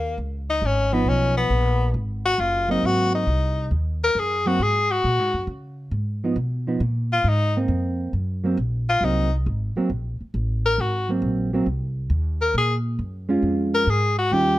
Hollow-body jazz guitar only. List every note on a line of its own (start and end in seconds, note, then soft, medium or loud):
0.93 1.48 F3 medium
0.93 1.49 B3 medium
0.93 1.49 D#4 medium
2.68 3.24 F#3 medium
2.68 3.25 A#3 medium
2.68 3.25 C4 medium
4.46 4.59 F#3 medium
4.46 4.59 A#3 medium
4.46 4.60 C4 medium
6.24 6.36 F3 medium
6.24 6.37 B3 medium
6.24 6.37 D#4 medium
6.67 6.80 F3 medium
6.67 6.81 B3 medium
6.67 6.81 D#4 medium
7.57 8.12 A#3 medium
7.57 8.12 C4 medium
8.44 8.57 F#3 medium
8.44 8.57 A#3 medium
8.44 8.58 C4 medium
9.02 9.29 F#3 soft
9.02 9.29 A#3 soft
9.02 9.30 C4 medium
9.77 9.89 F#3 medium
9.77 9.90 A#3 medium
9.77 9.90 C4 medium
11.09 11.50 F#3 medium
11.09 11.50 A#3 medium
11.09 11.51 C4 medium
11.53 11.66 F#3 medium
11.53 11.66 A#3 medium
11.53 11.67 C4 medium
13.29 13.85 G#3 medium
13.29 13.85 C#4 medium
13.29 13.86 F4 medium
14.32 14.59 D#3 medium
14.32 14.59 G3 medium
14.32 14.59 C#4 medium
14.32 14.59 F4 medium